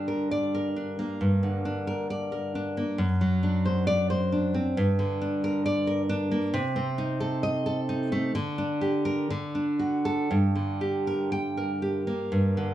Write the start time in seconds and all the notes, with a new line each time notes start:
Already playing: G2 D3 D4
0.08 A#4
0.31 D5
0.55 A#4
0.76 D4
0.99 A#3
1.21 G2
1.43 D3
1.65 D4
1.87 A#4
2.10 D5
2.32 A#4
2.55 D4
2.77 A#3
2.98 F#2
3.21 F#3
3.43 D4
3.65 C5
3.87 D5
4.10 C5
4.32 D4
4.54 C4
4.77 G2
4.99 D3
5.21 D4
5.44 A#4
5.66 D5
5.87 A#4
6.09 D4
6.31 A#3
6.54 C3
6.76 C4
6.98 D#4
7.20 A4
7.43 D#5
7.66 A4
7.89 D#4
8.12 A3
8.35 D3
8.58 D4
8.81 G4
9.05 A#4
9.30 D3
9.55 D4
9.79 F#4
10.05 A4
10.31 G2
10.55 D3
10.81 G4
11.07 A#4
11.32 G5
11.57 A#4
11.82 G4
12.07 A#3
12.32 G2
12.57 D3